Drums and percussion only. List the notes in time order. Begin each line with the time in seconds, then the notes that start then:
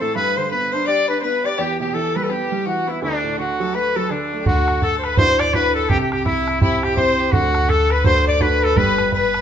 4.46 bodhran
4.68 bodhran
4.82 bodhran
5.04 bodhran
5.17 bodhran
5.39 bodhran
5.54 bodhran
5.90 bodhran
6.12 bodhran
6.26 bodhran
6.48 bodhran
6.62 bodhran
6.83 bodhran
6.97 bodhran
7.33 bodhran
7.55 bodhran
7.69 bodhran
7.90 bodhran
8.04 bodhran
8.40 bodhran
8.76 bodhran
8.98 bodhran
9.12 bodhran
9.34 bodhran